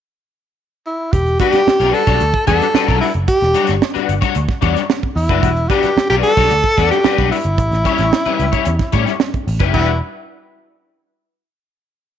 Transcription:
0.86 tenor saxophone E4
1.13 picked electric bass E1, tenor saxophone G4, kick, closed hi-hat
1.26 closed hi-hat
1.39 clean electric guitar G3 D4 F#4 B4, tenor saxophone G4, kick, closed hi-hat
1.52 muted picked electric bass stroke, snare, closed hi-hat
1.67 muted picked electric bass stroke, snare
1.80 picked electric bass B1, clean electric guitar G3 D4 F#4 B4, closed hi-hat
1.93 tenor saxophone A4, open hi-hat
2.07 picked electric bass B1, clean electric guitar G3 D4 F#4 C#5, kick, snare, closed hi-hat
2.20 picked electric bass D2, closed hi-hat
2.34 kick
2.47 picked electric bass E2, clean electric guitar G3 D4 F#4 B4, tenor saxophone A4, kick, snare, closed hi-hat
2.62 snare, closed hi-hat
2.74 clean electric guitar G3 D4 F#4 B4, muted picked electric bass stroke, snare
2.88 picked electric bass B1, clean electric guitar G3 D4 F#4 B4, kick, snare, closed hi-hat
3.01 tenor saxophone E4, open hi-hat
3.14 picked electric bass F#1, closed hi-hat
3.28 tenor saxophone G4, kick, closed hi-hat
3.41 picked electric bass E1, snare, closed hi-hat
3.54 clean electric guitar G3 D4 F#4 C#5, closed hi-hat
3.67 picked electric bass G1, snare, closed hi-hat
3.82 snare
3.94 clean electric guitar G3 D4 F#4 B4, muted picked electric bass stroke, closed hi-hat
4.09 picked electric bass G1, closed hi-hat
4.21 clean electric guitar G3 D4 F#4 C#5, kick, closed hi-hat
4.35 picked electric bass D2, closed hi-hat
4.49 kick, snare
4.61 picked electric bass E2, clean electric guitar G3 D4 F#4 C#5, kick, closed hi-hat
4.76 snare, closed hi-hat
4.90 snare
5.03 kick
5.16 picked electric bass E2, tenor saxophone E4, open hi-hat
5.29 picked electric bass F#1, clean electric guitar G3 D4 F#4 B4, kick, closed hi-hat
5.43 picked electric bass E1, kick, closed hi-hat
5.57 closed hi-hat
5.69 clean electric guitar G3 D4 F#4 B4, tenor saxophone G4, kick, closed hi-hat
5.83 muted picked electric bass stroke, snare, closed hi-hat
5.97 muted picked electric bass stroke, snare
6.10 picked electric bass B1, clean electric guitar G3 D4 F#4 B4, tenor saxophone G4, closed hi-hat
6.23 tenor saxophone A4, open hi-hat
6.37 picked electric bass B1, clean electric guitar G3 D4 F#4 C#5, kick, snare, closed hi-hat
6.50 picked electric bass D2, closed hi-hat
6.64 kick, closed hi-hat
6.77 picked electric bass E2, clean electric guitar G3 D4 F#4 B4, kick, snare, closed hi-hat
6.91 tenor saxophone G4, snare, closed hi-hat
7.04 clean electric guitar G3 D4 F#4 B4, muted picked electric bass stroke, snare
7.17 picked electric bass B1, clean electric guitar G3 D4 F#4 B4, kick, snare, closed hi-hat
7.31 tenor saxophone E4, open hi-hat
7.44 picked electric bass G1, closed hi-hat
7.58 picked electric bass A1, kick, closed hi-hat
7.71 picked electric bass A1, snare, closed hi-hat
7.84 clean electric guitar G3 C#4 E4 C#5, kick, closed hi-hat
7.98 picked electric bass A1, snare, closed hi-hat
8.13 snare
8.25 clean electric guitar G3 C#4 E4 B4, muted picked electric bass stroke, closed hi-hat
8.39 picked electric bass C#2, closed hi-hat
8.52 clean electric guitar G3 C#4 E4 C#5, kick, closed hi-hat
8.65 picked electric bass E2, closed hi-hat
8.79 kick, snare, closed hi-hat
8.92 picked electric bass A2, clean electric guitar G3 C#4 E4 C#5, kick, closed hi-hat
9.07 snare, closed hi-hat
9.20 snare
9.34 kick, closed hi-hat
9.47 picked electric bass A1, open hi-hat
9.59 picked electric bass F#1, clean electric guitar G3 C#4 E4 B4, kick, closed hi-hat
9.73 picked electric bass E1, clean electric guitar G3 D4 F#4 B4, tenor saxophone E4, kick, crash

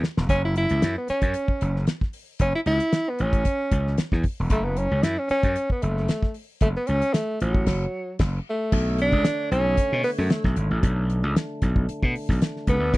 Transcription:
0.04 snare
0.17 slap bass E1, snare
0.29 slap bass F#1, tenor saxophone C#4, kick, closed hi-hat
0.45 tenor saxophone E4
0.56 tenor saxophone E4, closed hi-hat
0.69 slap bass C#2, closed hi-hat
0.82 slap bass F#2, snare, closed hi-hat
0.98 tenor saxophone B3
1.08 tenor saxophone C#4, muted slap bass stroke, snare, closed hi-hat
1.21 slap bass F#2, kick, closed hi-hat
1.34 closed hi-hat
1.48 kick
1.61 slap bass F#1, closed hi-hat
1.76 snare
1.87 snare, closed hi-hat
2.01 kick, snare
2.13 open hi-hat
2.39 slap bass F#1, tenor saxophone C#4, kick, closed hi-hat
2.55 tenor saxophone E4
2.66 slap bass C#2, tenor saxophone E4, closed hi-hat
2.80 closed hi-hat
2.93 snare, closed hi-hat
3.09 tenor saxophone B3
3.19 slap bass A1, tenor saxophone C#4, closed hi-hat
3.33 kick, closed hi-hat
3.45 kick, closed hi-hat
3.72 slap bass C#2, kick, closed hi-hat
3.87 snare
3.98 muted slap bass stroke, snare, closed hi-hat
4.12 slap bass E2, kick, snare
4.23 kick, open hi-hat
4.40 slap bass E1
4.50 slap bass F#1, tenor saxophone A3, kick, closed hi-hat
4.64 tenor saxophone B3
4.77 tenor saxophone C#4, closed hi-hat
4.91 slap bass C#2
5.03 slap bass F#2, tenor saxophone E4, snare, closed hi-hat
5.18 tenor saxophone C#4
5.29 tenor saxophone C#4, muted slap bass stroke, snare, closed hi-hat
5.43 slap bass F#2, kick, closed hi-hat
5.56 closed hi-hat
5.70 tenor saxophone B3, kick
5.82 slap bass F#1, tenor saxophone A3, closed hi-hat
5.98 snare
6.08 snare, closed hi-hat
6.22 kick, snare
6.34 open hi-hat
6.61 slap bass F#1, tenor saxophone A3, kick, closed hi-hat
6.77 tenor saxophone B3
6.87 slap bass C#2, tenor saxophone C#4, closed hi-hat
7.02 closed hi-hat
7.13 tenor saxophone A3, snare, closed hi-hat
7.40 slap bass A1, tenor saxophone F#3, closed hi-hat
7.55 kick
7.66 slap bass F#1, kick, snare, crash
8.19 slap bass F#1, kick, snare, crash
8.50 tenor saxophone A3
8.72 slap bass B1, tonewheel organ D3 A3 C#5, kick, crash
8.98 tenor saxophone D4, closed hi-hat
9.12 slap bass C#2, kick
9.25 snare, closed hi-hat
9.51 slap bass B1, tenor saxophone C#4, closed hi-hat
9.77 kick, closed hi-hat
9.92 slap bass B2
10.03 tenor saxophone B3, open hi-hat
10.18 slap bass F#2, tenor saxophone A3, snare
10.30 snare, closed hi-hat
10.44 slap bass B1, kick, snare
10.56 slap bass G#1, closed hi-hat
10.71 slap bass A1
10.82 slap bass B1, tonewheel organ D4, kick, closed hi-hat
11.10 closed hi-hat
11.23 slap bass C#2
11.36 snare, closed hi-hat
11.62 slap bass B1, kick, snare, closed hi-hat
11.76 kick
11.89 closed hi-hat
12.03 slap bass B2, kick
12.15 open hi-hat
12.29 slap bass B1, kick, snare
12.42 snare, closed hi-hat
12.56 snare
12.67 slap bass C#2, tenor saxophone B3, kick, closed hi-hat
12.80 slap bass D2
12.92 slap bass E2, tonewheel organ D3 F#3 G#3 C#5, kick, closed hi-hat

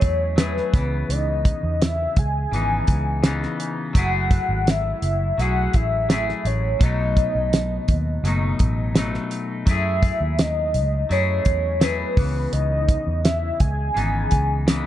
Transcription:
Already playing: clean electric guitar F#3 A3 E4 G#4, soft synth lead C#5
0.01 fingered electric bass E2, kick, closed hi-hat
0.36 clean electric guitar F#3 A3 E4 G#4, soft synth lead B4, snare, closed hi-hat
0.57 snare
0.74 fingered electric bass C#2, clean electric guitar E3 B3, kick, closed hi-hat
0.78 clean electric guitar C#3
1.09 fingered electric bass C#2, soft synth lead D#5, closed hi-hat
1.45 kick, closed hi-hat
1.63 fingered electric bass E2
1.82 soft synth lead E5, snare, closed hi-hat
2.16 fingered electric bass C#2, soft synth lead G#5, kick, closed hi-hat
2.52 fingered electric bass G#1, clean electric guitar C#3 E3 B3 D#4, closed hi-hat
2.87 fingered electric bass C#2, kick, closed hi-hat
3.23 clean electric guitar C#3 E3 B3, snare, closed hi-hat
3.27 clean electric guitar D#4
3.43 snare
3.60 closed hi-hat
3.93 fingered electric bass F#1, clean electric guitar F#3 A3, kick, closed hi-hat
3.97 clean electric guitar E4 G#4, soft synth lead F#5
4.31 kick, closed hi-hat
4.49 fingered electric bass G#1
4.67 soft synth lead E5, snare, closed hi-hat
5.02 fingered electric bass F#1, closed hi-hat
5.38 fingered electric bass B1, clean electric guitar F#3 A3 E4, soft synth lead F#5, closed hi-hat
5.42 clean electric guitar G#4
5.73 fingered electric bass A1, soft synth lead E5, kick, closed hi-hat
6.09 clean electric guitar F#3 A3 E4 G#4, snare, closed hi-hat
6.29 snare
6.45 fingered electric bass A1, soft synth lead C#5, closed hi-hat
6.79 fingered electric bass B1, clean electric guitar B2 F#3, soft synth lead D#5, kick, closed hi-hat
6.84 clean electric guitar A3 D#4
7.17 kick, closed hi-hat
7.35 fingered electric bass B1
7.53 snare, closed hi-hat
7.88 fingered electric bass D#2, kick, closed hi-hat
8.23 fingered electric bass F#1, clean electric guitar B2 F#3 A3, closed hi-hat
8.28 clean electric guitar D#4
8.59 fingered electric bass A1, kick, closed hi-hat
8.95 clean electric guitar B2 F#3 A3 D#4, snare, closed hi-hat
9.14 snare
9.31 closed hi-hat
9.66 fingered electric bass F#2, clean electric guitar F#3 A3 E4, kick, closed hi-hat
9.70 clean electric guitar G#4, soft synth lead E5
10.03 kick, closed hi-hat
10.20 fingered electric bass D#2
10.39 soft synth lead D#5, snare, closed hi-hat
10.74 fingered electric bass C#2, closed hi-hat
11.09 fingered electric bass F#2, clean electric guitar F#3 A3 E4 G#4, soft synth lead C#5, closed hi-hat
11.45 fingered electric bass E2, kick, closed hi-hat
11.80 clean electric guitar F#3 A3 E4 G#4, soft synth lead B4, snare, closed hi-hat
12.17 fingered electric bass C#2, clean electric guitar C#3 E3 B3, kick, open hi-hat
12.53 fingered electric bass C#2, soft synth lead D#5, closed hi-hat
12.89 kick, closed hi-hat
13.07 fingered electric bass E2
13.24 soft synth lead E5, snare, closed hi-hat
13.60 fingered electric bass C#2, soft synth lead G#5, kick, closed hi-hat
13.94 fingered electric bass G#1, clean electric guitar C#3 E3 B3 D#4, closed hi-hat
14.31 fingered electric bass C#2, kick, closed hi-hat
14.67 clean electric guitar C#3 E3 B3 D#4, snare, closed hi-hat

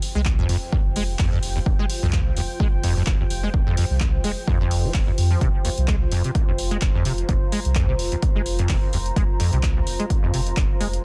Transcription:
Already playing: ambient pad F4 C5 G5
0.02 open hi-hat
0.15 sub bass C2, acid bass G#3
0.25 kick, clap
0.38 acid bass F2
0.49 sub bass F1, acid bass F2, open hi-hat
0.72 acid bass D#2, kick
0.85 sub bass F1
0.96 acid bass G#3, open hi-hat
1.19 sub bass F1, acid bass F2, kick, clap, open hi-hat
1.32 acid bass F2
1.43 sub bass F1, open hi-hat
1.56 acid bass D#2
1.66 sub bass F1, kick
1.79 acid bass G#3
1.90 open hi-hat
2.02 sub bass C2, acid bass F2
2.13 acid bass F2, kick, clap
2.37 sub bass F1, acid bass D#2, open hi-hat
2.60 acid bass G#3, kick
2.73 sub bass F1
2.83 acid bass F2, open hi-hat
2.96 acid bass F2
3.06 sub bass F1, kick, clap
3.20 acid bass D#2
3.30 sub bass F1, open hi-hat
3.43 acid bass G#3
3.54 sub bass F1, kick
3.67 acid bass F2
3.77 acid bass F2, open hi-hat
3.90 sub bass C2
4.00 acid bass D#2, kick, clap
4.24 sub bass F1, acid bass G#3, open hi-hat
4.47 acid bass F2, kick
4.60 sub bass F1, acid bass F2
4.71 open hi-hat
4.84 acid bass F3
4.94 sub bass F1, kick, clap
5.07 acid bass F2
5.18 sub bass F2, open hi-hat
5.31 acid bass F3
5.41 sub bass F1, acid bass C3, kick, closed hi-hat
5.65 acid bass D#2, open hi-hat
5.78 sub bass C2, closed hi-hat
5.88 acid bass G#3, kick, clap, closed hi-hat
5.98 ambient pad A#5
6.12 sub bass F1, acid bass F2, open hi-hat
6.24 acid bass C3, closed hi-hat
6.35 kick, closed hi-hat
6.48 sub bass F1, acid bass D#2
6.58 open hi-hat
6.71 acid bass G#3, closed hi-hat
6.81 sub bass F1, kick, clap, closed hi-hat
6.95 acid bass F2
7.05 sub bass F1, acid bass C3, open hi-hat
7.18 closed hi-hat
7.29 sub bass F1, acid bass D#2, kick, closed hi-hat
7.52 acid bass G#3, open hi-hat
7.65 sub bass C2, closed hi-hat
7.75 acid bass F2, kick, clap, closed hi-hat
7.89 acid bass C3
7.99 sub bass F1, open hi-hat
8.12 acid bass D#2, closed hi-hat
8.22 kick, closed hi-hat
8.35 sub bass F1, acid bass G#3
8.46 open hi-hat
8.59 acid bass F2, closed hi-hat
8.69 sub bass F1, acid bass C3, kick, clap, open hi-hat
8.93 sub bass F1, acid bass D#2, open hi-hat
9.06 closed hi-hat
9.16 sub bass F1, acid bass G#3, kick, closed hi-hat
9.40 acid bass F2, open hi-hat
9.53 sub bass C2, acid bass C3, closed hi-hat
9.63 kick, clap, closed hi-hat
9.76 acid bass D#2
9.87 sub bass F1, open hi-hat
9.99 acid bass G#3, closed hi-hat
10.10 kick, closed hi-hat
10.23 sub bass F1, acid bass F2
10.33 acid bass C3, open hi-hat
10.47 closed hi-hat
10.57 sub bass F1, acid bass D#2, kick, clap, closed hi-hat
10.80 sub bass F1, acid bass G#3, open hi-hat
10.93 closed hi-hat

